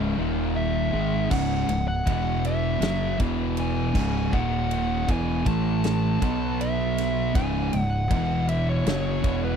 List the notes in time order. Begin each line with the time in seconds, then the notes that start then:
Already playing: C#1 C#2 G#2 C#3
0.17 D#1 D#2 A#2 D#3
0.56 E5
0.93 G#1 G#2 D#3 G#3
1.30 C#1 C#2 G#2 C#3 F#5, kick, crash
1.67 C#1 C#2 G#2, ride
1.88 F#5
2.06 E1 E2 B2 E3, kick, ride
2.45 E5, ride
2.80 F#1 F#2 C#3 F#3, snare, ride
3.18 E1 E2 B2 E3, kick, ride
3.57 G#5, ride
3.94 C#1 C#2 G#2 C#3, kick, snare, crash
4.32 D#1 D#2 A#2 D#3 F#5, kick
4.71 ride
5.07 E1 E2 B2 E3 G#5, kick, ride
5.46 A1 A2 E3 A3 A5, kick, ride
5.84 snare, ride
6.21 B1 B2 F#3 B3, kick, ride
6.61 E5, ride
6.98 snare, ride
7.34 C#1 C#2 G#2 C#3 G#5, kick, ride
7.72 C#1 C#2 G#2, ride
7.81 F#5
7.90 F#5
8.09 E1 E2 B2 E3, kick, ride
8.48 E5, ride
8.69 C#5
8.85 F#1 F#2 C#3 F#3, snare, ride
9.22 E1 E2 B2 E3, kick, ride
9.45 B4